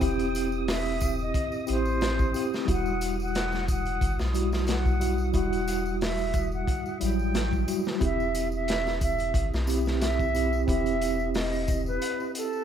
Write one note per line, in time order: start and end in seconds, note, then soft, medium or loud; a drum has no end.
0.00 1.32 E1 loud
0.00 1.67 C4 loud
0.00 1.67 E4 medium
0.00 0.03 G4 loud
0.00 1.65 G4 loud
0.00 0.63 G5 loud
0.00 12.64 D#6 medium
0.00 kick loud
0.00 closed hi-hat medium
0.00 tambourine soft
0.19 closed hi-hat soft
0.19 tambourine soft
0.35 closed hi-hat medium
0.35 tambourine medium
0.52 tambourine soft
0.68 1.15 E5 medium
0.68 snare loud
0.68 open hi-hat medium
0.68 tambourine medium
0.86 tambourine soft
1.01 kick medium
1.01 closed hi-hat medium
1.01 tambourine loud
1.19 1.64 D#5 medium
1.19 tambourine soft
1.34 kick medium
1.34 closed hi-hat medium
1.34 tambourine soft
1.52 tambourine soft
1.67 2.32 A1 medium
1.67 2.30 C4 medium
1.67 2.30 E4 medium
1.67 2.31 G4 loud
1.67 closed hi-hat medium
1.67 tambourine medium
1.71 2.57 C5 medium
1.85 tambourine soft
2.01 snare loud
2.01 closed hi-hat medium
2.01 tambourine medium
2.19 kick medium
2.19 tambourine soft
2.33 2.63 C4 medium
2.33 2.64 E4 medium
2.33 2.64 G4 medium
2.33 closed hi-hat medium
2.33 tambourine medium
2.54 snare medium
2.54 tambourine soft
2.65 3.98 E1 loud
2.65 4.29 G3 medium
2.65 4.30 E4 medium
2.65 4.31 F#4 loud
2.65 kick loud
2.65 closed hi-hat medium
2.65 tambourine medium
2.71 3.15 F#5 loud
2.86 tambourine soft
3.01 closed hi-hat medium
3.01 tambourine medium
3.20 3.64 F#5 loud
3.20 tambourine soft
3.35 snare loud
3.35 closed hi-hat medium
3.35 tambourine soft
3.52 snare soft
3.52 tambourine soft
3.68 4.15 F#5 loud
3.68 kick loud
3.68 closed hi-hat medium
3.68 tambourine medium
3.85 closed hi-hat soft
3.85 tambourine soft
4.01 4.17 G1 loud
4.01 kick loud
4.01 closed hi-hat medium
4.01 tambourine soft
4.19 5.32 B1 medium
4.19 snare medium
4.19 tambourine soft
4.34 4.97 G3 loud
4.34 4.97 E4 medium
4.34 4.98 F#4 loud
4.34 closed hi-hat medium
4.34 tambourine medium
4.53 snare soft
4.53 tambourine soft
4.67 5.29 F#5 medium
4.67 snare loud
4.67 closed hi-hat medium
4.67 tambourine medium
4.85 kick medium
4.85 tambourine soft
5.00 5.30 G3 medium
5.00 5.30 E4 medium
5.00 5.31 F#4 medium
5.00 closed hi-hat medium
5.00 tambourine medium
5.18 tambourine soft
5.33 6.65 E1 medium
5.33 6.96 G3 medium
5.33 6.97 E4 medium
5.33 6.98 F#4 medium
5.33 5.95 F#5 medium
5.33 kick loud
5.33 closed hi-hat medium
5.33 tambourine soft
5.53 closed hi-hat soft
5.53 tambourine soft
5.68 closed hi-hat medium
5.68 tambourine medium
5.86 tambourine soft
6.01 6.48 E5 medium
6.01 snare loud
6.01 open hi-hat medium
6.01 tambourine soft
6.18 tambourine soft
6.34 kick medium
6.34 closed hi-hat medium
6.34 tambourine medium
6.52 6.97 F#5 medium
6.52 tambourine soft
6.67 kick loud
6.67 closed hi-hat medium
6.67 tambourine soft
6.86 tambourine soft
7.00 7.65 A1 medium
7.00 7.64 F#3 loud
7.00 7.64 G3 medium
7.00 7.64 E4 medium
7.00 7.89 G5 medium
7.00 closed hi-hat medium
7.00 tambourine medium
7.19 tambourine soft
7.34 snare loud
7.34 closed hi-hat medium
7.34 tambourine soft
7.53 kick medium
7.53 tambourine soft
7.67 7.97 G3 medium
7.67 7.97 E4 medium
7.67 7.98 F#4 medium
7.67 closed hi-hat medium
7.67 tambourine medium
7.85 snare medium
7.85 tambourine soft
7.99 9.32 E1 medium
7.99 9.63 C4 medium
7.99 9.64 E4 medium
7.99 9.65 G4 loud
7.99 8.48 E5 medium
7.99 kick loud
7.99 closed hi-hat medium
7.99 tambourine soft
8.20 tambourine soft
8.35 closed hi-hat medium
8.35 tambourine medium
8.52 8.97 E5 loud
8.52 tambourine soft
8.68 snare loud
8.68 closed hi-hat medium
8.68 tambourine soft
8.87 snare soft
8.87 tambourine soft
9.01 9.47 E5 loud
9.01 kick medium
9.01 closed hi-hat medium
9.01 tambourine medium
9.19 closed hi-hat soft
9.19 tambourine soft
9.34 9.50 G1 loud
9.34 kick loud
9.34 closed hi-hat medium
9.34 tambourine soft
9.53 10.65 B1 medium
9.53 snare medium
9.53 tambourine soft
9.67 10.30 C4 loud
9.67 10.31 E4 medium
9.67 10.31 G4 loud
9.67 closed hi-hat medium
9.67 tambourine medium
9.86 snare medium
9.86 tambourine soft
10.01 10.62 E5 loud
10.01 snare loud
10.01 closed hi-hat medium
10.01 tambourine soft
10.20 kick medium
10.20 tambourine soft
10.34 10.64 C4 medium
10.34 10.64 E4 medium
10.34 10.65 G4 medium
10.34 closed hi-hat medium
10.34 tambourine medium
10.53 tambourine soft
10.67 11.98 E1 loud
10.67 12.30 C4 medium
10.67 12.31 E4 medium
10.67 12.32 G4 loud
10.67 11.29 E5 medium
10.67 kick loud
10.67 closed hi-hat medium
10.67 tambourine soft
10.86 closed hi-hat soft
10.86 tambourine soft
11.01 closed hi-hat medium
11.01 tambourine medium
11.20 tambourine soft
11.34 11.81 D#5 medium
11.34 snare loud
11.34 open hi-hat medium
11.34 tambourine soft
11.54 tambourine soft
11.68 kick medium
11.68 closed hi-hat medium
11.68 tambourine medium
11.86 12.30 B4 medium
11.86 tambourine soft
12.02 closed hi-hat medium
12.02 tambourine soft
12.20 tambourine soft
12.35 12.64 A4 medium
12.35 closed hi-hat medium
12.35 tambourine medium
12.53 tambourine soft